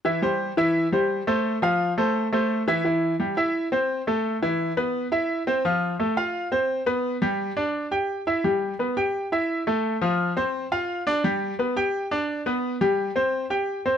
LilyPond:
\new Staff \with { instrumentName = "Grand piano" } { \time 4/4 \key c \major \tempo 4 = 172 <e e' e''>8 <g g' c''>4 <e e' e''>4 <g g' c''>4 <a a' c''>8~ | <a a' c''>8 <f f' f''>4 <a a' c''>4 <a a' c''>4 <e e' e''>8 | <e e'>4 <g g'>8 <e' e''>4 <c' c''>4 <a a'>8~ | <a a'>8 <e e'>4 <b b'>4 <e' e''>4 <c' c''>8 |
<f f'>4 <a a'>8 <f' f''>4 <c' c''>4 <b b'>8~ | <b b'>8 <g g'>4 <d' d''>4 <g' g''>4 <e' e''>8 | <g g'>4 <b b'>8 <g' g''>4 <e' e''>4 <a a'>8~ | <a a'>8 <f f'>4 <c' c''>4 <f' f''>4 <d' d''>8 |
<g g'>4 <b b'>8 <g' g''>4 <d' d''>4 <b b'>8~ | <b b'>8 <g g'>4 <c' c''>4 <g' g''>4 <c' c''>8 | }